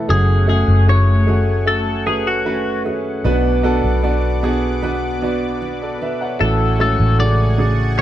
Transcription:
Already playing: E2 E3 A3 B3 E4 A4
0.08 F#1 F#2 A3 C#4 F#4 G#4 F#5 G#5 C#6
0.47 A3 C#4 F#4 G#4
0.68 F#1
0.87 A3 C#4 F#4 G#4 C#5
1.26 A3 C#4 F#4 G#4
1.66 A3 C#4 F#4 A4
2.06 A3 C#4 F#4 G#4 B4
2.27 F#4
2.45 A3 C#4 F#4 G#4 B4
2.85 A3 C#4 F#4 G#4
3.24 B1 B2 B3 D4 F#4 B4 D5 D6
3.63 B3 D4 F#4 A4
3.84 B1
4.03 B3 D4 F#4 D5
4.43 B3 D4 F#4 G#4
4.82 B3 D4 F#4 B4
5.22 B3 D4 F#4 D5
5.62 F#4
5.82 A4 D5
6.02 D4 B4 E5
6.21 C#5 F#5
6.39 A1 A2 A3 C#4 F#4 A4 F#5 G#5 C#6
6.79 G#3 A3 C#4 F#4 A4 C#5
7.00 A1
7.19 C#3 A3 F#4 G#4 D5
7.58 C#3 A3 F#4 G#4
7.98 A3 C#4 F#4

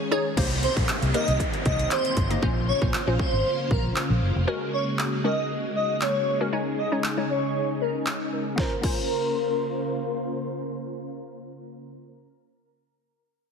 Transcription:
Already playing: D#3 G#3 C#4 G#4
0.11 D#4 G#4 C#5
0.37 C2 D#3 A#3 C4 D#4 G4 C5, kick, closed hi-hat, crash, downlifter
0.51 closed hi-hat
0.63 C5, closed hi-hat
0.77 A#1, kick, closed hi-hat
0.89 clap, closed hi-hat
1.02 C2, closed hi-hat
1.14 A#3 D#4 G4 A#4 D#5, closed hi-hat
1.28 C2, closed hi-hat
1.40 kick, closed hi-hat
1.53 closed hi-hat
1.66 C2 D#5, kick, closed hi-hat
1.79 closed hi-hat
1.91 C5, clap, closed hi-hat
2.05 closed hi-hat
2.17 G1, kick, closed hi-hat
2.30 A#3 D#4 G4 D#5, closed hi-hat
2.42 A#1 C#3 A#3 C#4 F4 C5, kick
2.68 C#5
2.82 A#1 A#3 C#4 F4 C5, kick
2.94 clap
3.07 A#1 A#3 C#4 F4 C5
3.19 C5, kick
3.33 G#1
3.71 A#1 A#4, kick
3.96 clap
4.10 A#1
4.22 F#1
4.36 F1
4.47 G#3 C#4 F#4 A#4
4.73 C#5
4.99 clap
5.24 G#3 C#4 F#4 A#4 D#5
5.76 D#5
6.01 C#5, clap
6.41 G#3 C#4 F#4 A#4
6.52 C#3 G#3 C#4 D#4 G#4 C#5
6.78 D#5
6.92 G#3 C#4 D#4 C#5
7.04 clap
7.17 G#3 C#4 D#4 C#5
7.30 C#5
7.81 A#4
8.06 clap
8.56 C#3 A#3 C#4 F4 A#4 C5, kick, snare
8.60 C5
8.81 A#3 C#4 F4 A#4 C5, kick, crash

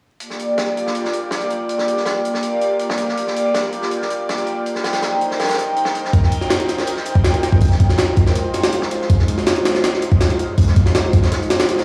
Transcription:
0.20 A#3 F4 G4 D5, closed hi-hat
0.30 snare
0.39 closed hi-hat
0.58 snare, closed hi-hat
0.76 A#3 F4 G4 D5, closed hi-hat
0.87 snare
0.95 closed hi-hat
1.05 snare
1.13 closed hi-hat
1.23 A#3 F4 G4 D5
1.31 snare, closed hi-hat
1.41 closed hi-hat
1.50 closed hi-hat
1.69 A#3 F4 G4 D5, closed hi-hat
1.78 snare
1.88 closed hi-hat
1.97 snare
2.06 snare, closed hi-hat
2.24 A#3 F4 G4 D5, closed hi-hat
2.34 snare
2.43 closed hi-hat
2.61 closed hi-hat
2.79 closed hi-hat
2.90 snare
2.98 A#3 F4 G4 D5, closed hi-hat
3.08 snare
3.17 A#3 F4 G4 D5, closed hi-hat
3.27 snare
3.36 closed hi-hat
3.54 snare, closed hi-hat
3.72 A#3 F4 G4 D5, closed hi-hat
3.82 snare
3.91 closed hi-hat
4.02 snare
4.10 closed hi-hat
4.19 A#3 F4 G4 D5
4.29 snare, closed hi-hat
4.38 closed hi-hat
4.47 closed hi-hat
4.65 D#4 A#4 C5 G5, closed hi-hat
4.75 snare
4.84 snare, closed hi-hat
4.93 snare, closed hi-hat
5.02 snare, closed hi-hat
5.20 D#4 A#4 C5 G5, closed hi-hat
5.31 snare
5.39 snare, closed hi-hat
5.44 snare, closed hi-hat
5.49 snare, closed hi-hat
5.52 snare, closed hi-hat
5.58 D#4 A#4 C5 G5, closed hi-hat
5.76 closed hi-hat
5.85 snare
5.95 closed hi-hat
6.05 snare
6.13 D#4 A#4 C5 G5, kick, closed hi-hat
6.23 snare
6.32 closed hi-hat
6.41 snare
6.50 snare, closed hi-hat
6.60 closed hi-hat
6.68 D#4 A#4 C5 G5, snare, closed hi-hat
6.78 snare
6.87 closed hi-hat
6.96 snare
7.05 closed hi-hat
7.15 D#4 A#4 C5 G5, kick
7.24 snare, closed hi-hat
7.34 closed hi-hat
7.43 snare, closed hi-hat
7.52 kick
7.60 D#4 A#4 C5 G5, kick, closed hi-hat, open hi-hat
7.71 snare
7.80 kick, closed hi-hat
7.89 snare
7.98 snare, closed hi-hat
8.16 G#3 D#4 F4 C5, kick, closed hi-hat
8.26 snare
8.36 closed hi-hat
8.54 snare, closed hi-hat
8.64 snare
8.73 closed hi-hat
8.82 snare
8.91 G#3 D#4 F4 C5, closed hi-hat
9.01 snare
9.09 G#3 D#4 F4 C5, kick, closed hi-hat
9.19 snare
9.28 closed hi-hat
9.38 snare
9.46 snare, closed hi-hat
9.56 closed hi-hat
9.65 G#3 D#4 F4 C5, snare, closed hi-hat
9.75 snare
9.84 snare, closed hi-hat
9.93 snare
10.02 closed hi-hat
10.11 G#3 D#4 F4 C5, kick
10.20 snare, closed hi-hat
10.30 closed hi-hat
10.39 closed hi-hat
10.57 G#3 D#4 F4 C5, kick, closed hi-hat, open hi-hat
10.67 snare
10.76 kick, closed hi-hat
10.85 snare
10.95 snare, closed hi-hat
11.13 G#3 D#4 F4 C5, kick, closed hi-hat
11.23 snare
11.32 snare, closed hi-hat
11.42 closed hi-hat
11.50 G#3 D#4 F4 C5, snare, closed hi-hat
11.60 snare
11.69 closed hi-hat
11.78 snare

